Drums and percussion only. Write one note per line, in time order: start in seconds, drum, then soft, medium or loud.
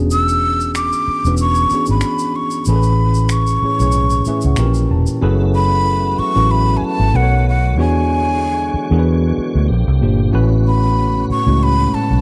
0.11 shaker medium
0.28 shaker soft
0.60 shaker soft
0.75 finger snap medium
0.75 shaker medium
0.93 shaker soft
1.25 shaker soft
1.37 shaker medium
1.55 shaker soft
1.70 shaker soft
1.86 shaker soft
2.01 finger snap medium
2.01 shaker medium
2.19 shaker soft
2.51 shaker soft
2.65 shaker medium
2.83 shaker soft
3.14 shaker soft
3.29 finger snap medium
3.29 shaker medium
3.47 shaker soft
3.80 shaker soft
3.92 shaker medium
4.10 shaker soft
4.25 shaker soft
4.41 shaker medium
4.56 finger snap soft
4.56 shaker medium
4.74 shaker soft
5.07 shaker soft